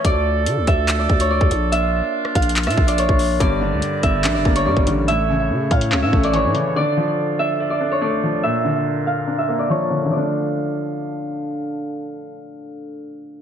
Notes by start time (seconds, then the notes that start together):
Already playing: C#5 E5
0.05 D2 D3 D4 F4 A4 D5, kick, closed hi-hat
0.46 D3, closed hi-hat
0.57 D2
0.67 D2 E5, kick, closed hi-hat
0.88 clap, closed hi-hat
0.99 D5
1.09 D2, kick
1.20 C#5, closed hi-hat
1.31 D5
1.41 D2, kick
1.51 A#1, closed hi-hat
1.72 A#3 D4 F4 E5, closed hi-hat
2.25 cross-stick
2.35 A#1 F5, kick, closed hi-hat
2.42 closed hi-hat
2.49 closed hi-hat
2.56 clap, closed hi-hat
2.63 A#2 E5, cross-stick, closed hi-hat
2.70 closed hi-hat
2.77 A#1, kick
2.87 D5, closed hi-hat
2.98 C#5, closed hi-hat
3.09 A#1, kick
3.19 open hi-hat
3.40 G1 G2 G3 G4 A#4 D5, kick, closed hi-hat
3.61 D3
3.72 D2
3.82 closed hi-hat
4.03 G1 E5, kick, closed hi-hat
4.24 A#1 D4, clap, closed hi-hat
4.34 G1 D5
4.45 G1 A#3, kick
4.55 C#5, closed hi-hat
4.66 G2 G3 D5
4.77 G1, kick
4.87 A1 D3, closed hi-hat
5.08 A2 A3 A4 C#5 E5, closed hi-hat
5.30 C#3
5.50 C#3
5.71 A2 F5, kick, closed hi-hat
5.81 closed hi-hat
5.92 C#2 C#4, clap
6.02 A2 E5
6.12 A1 A3, kick
6.23 D5, closed hi-hat
6.33 E3 C#5, closed hi-hat
6.44 A2
6.55 C#3, closed hi-hat
6.76 D3 D4 F4 D5
6.97 F3
7.39 E5
7.60 D5
7.70 D5
7.81 D4
7.92 C#5
8.01 A3 D5
8.23 F3
8.43 A#2 A#3 D4 A#4 E5
8.65 D3
9.07 F5
9.27 D4
9.38 E5
9.49 A#3
9.59 D5
9.70 F3 C#5
9.90 D3
10.05 D3 F3
10.12 D3 A3 D4 A4 D5 F5
10.17 D4